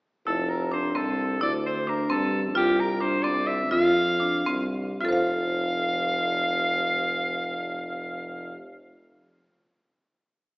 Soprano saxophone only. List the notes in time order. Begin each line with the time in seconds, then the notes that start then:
0.27 A4
0.49 A#4
0.73 C5
0.96 A4
1.43 D5
1.66 C5
1.89 A#4
2.11 A4
2.57 G4
2.80 A#4
3.01 C5
3.23 D5
3.47 E5
3.72 F5
5.01 F5